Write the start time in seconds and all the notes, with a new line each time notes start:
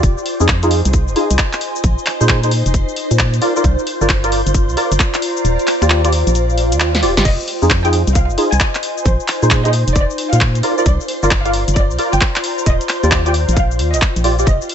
Already playing: F4
0.03 F1 C5, kick, closed hi-hat, cabasa
0.18 cabasa
0.26 open hi-hat
0.37 F2 D#4 F4 G#4 D#5 G#5, cabasa
0.48 kick, clap, cabasa
0.63 D#4 F4 G#4, closed hi-hat, cabasa
0.71 open hi-hat
0.85 C2, closed hi-hat, cabasa
0.93 kick, closed hi-hat, cabasa
1.08 F1, cabasa
1.16 D#4 F4 G#4, open hi-hat
1.31 C2, closed hi-hat, cabasa
1.39 kick, clap, cabasa
1.53 clap, closed hi-hat, cabasa
1.61 open hi-hat
1.76 cabasa
1.84 A#1 D#4, kick, closed hi-hat, cabasa
1.98 cabasa
2.06 clap, open hi-hat
2.12 C5
2.21 A#2 D#4 G#4 C5, cabasa
2.29 kick, clap, cabasa
2.43 D#4 G#4 C5, closed hi-hat, cabasa
2.51 open hi-hat
2.66 F1, closed hi-hat, cabasa
2.74 kick, closed hi-hat, cabasa
2.89 cabasa
2.96 open hi-hat
3.11 A#2, closed hi-hat, cabasa
3.19 kick, clap, cabasa
3.34 closed hi-hat, cabasa
3.42 F4 A#4 D5, open hi-hat
3.56 F4 A#4 D5, cabasa
3.64 C2, kick, closed hi-hat, cabasa
3.79 cabasa
3.87 D5, open hi-hat
4.01 G1 F4 A#4 D5, cabasa
4.09 kick, clap, cabasa
4.24 F4 A#4 D5, closed hi-hat, cabasa
4.32 A#5, open hi-hat
4.46 G1, closed hi-hat, cabasa
4.54 kick, closed hi-hat, cabasa
4.69 C2, cabasa
4.77 F4 A#4 D5, open hi-hat
4.91 G1, closed hi-hat, cabasa
5.00 kick, clap, cabasa
5.14 clap, closed hi-hat, cabasa
5.22 open hi-hat
5.37 cabasa
5.45 D#1, closed hi-hat, cabasa
5.59 closed hi-hat, cabasa
5.67 clap, open hi-hat
5.82 D#2 F4 G4 D5, finger snap, closed hi-hat, cabasa
5.90 clap, cabasa
6.04 F4 G4 D5, finger snap, closed hi-hat, cabasa
6.12 open hi-hat
6.27 A#1 G5, closed hi-hat, cabasa
6.35 closed hi-hat, swell, cabasa
6.50 cabasa
6.58 open hi-hat
6.72 D#2, closed hi-hat, cabasa
6.80 clap, cabasa
6.95 snare, closed hi-hat, cabasa
7.02 D#1 F4 G4 D5, open hi-hat
7.17 G1 F4 G4 D5, snare, cabasa
7.25 F1 C5 D#5, kick, closed hi-hat, crash, cabasa
7.37 D#5, cabasa
7.48 open hi-hat
7.62 F2 D#4 F4 G#4, cabasa
7.70 kick, clap, cabasa
7.85 D#4 F4 G#4 G5, closed hi-hat, cabasa
7.91 G#5, open hi-hat
8.07 C2, closed hi-hat, cabasa
8.15 F5, kick, closed hi-hat, cabasa
8.30 F1, cabasa
8.38 D#4 F4 G#4, open hi-hat
8.52 C2 G#5, closed hi-hat, cabasa
8.60 kick, clap, cabasa
8.75 clap, closed hi-hat, cabasa
8.83 open hi-hat
8.98 cabasa
9.05 A#1 D#4 C5, kick, closed hi-hat, cabasa
9.20 cabasa
9.27 C5, clap, open hi-hat
9.42 A#2 D#4 G#4 C5, cabasa
9.51 kick, clap, cabasa
9.65 D#4 G#4 C5 D#5, closed hi-hat, cabasa
9.73 open hi-hat
9.88 F1, closed hi-hat, cabasa
9.96 D5, kick, closed hi-hat, cabasa
10.10 cabasa
10.18 open hi-hat
10.33 A#2 F5, closed hi-hat, cabasa
10.41 kick, clap, cabasa
10.55 closed hi-hat, cabasa
10.63 F4 A#4 D5, open hi-hat
10.78 F4 A#4 D5, cabasa
10.86 C2 D5, kick, closed hi-hat, cabasa
11.01 cabasa
11.08 A#5, open hi-hat
11.23 G1 F4 A#4 D5, cabasa
11.31 kick, clap, cabasa
11.45 F4 A#4 D5 F5, closed hi-hat, cabasa
11.53 open hi-hat
11.68 G1, closed hi-hat, cabasa
11.76 D5, kick, closed hi-hat, cabasa
11.91 C2, cabasa
11.98 F4 A#4 D5, open hi-hat
12.13 G1 G5, closed hi-hat, cabasa
12.21 kick, clap, cabasa
12.36 clap, closed hi-hat, cabasa
12.44 open hi-hat
12.58 cabasa
12.66 D#1 D#5, kick, closed hi-hat, cabasa
12.81 closed hi-hat, cabasa
12.89 clap, open hi-hat
13.03 D#2 F4 G4 D5, closed hi-hat, cabasa
13.11 kick, clap, cabasa
13.26 F4 G4 D5 G5, closed hi-hat, cabasa
13.34 G5, open hi-hat
13.48 A#1, closed hi-hat, cabasa
13.57 F5, kick, closed hi-hat, cabasa
13.71 cabasa
13.79 D#2, open hi-hat
13.94 A#1 D#5, closed hi-hat, cabasa
14.02 kick, clap, cabasa
14.16 A#1, closed hi-hat, cabasa
14.24 F4 G4 D5, open hi-hat
14.39 F4 G4 D5, cabasa
14.47 F1 D#5 F5, kick, closed hi-hat, cabasa
14.61 cabasa
14.69 open hi-hat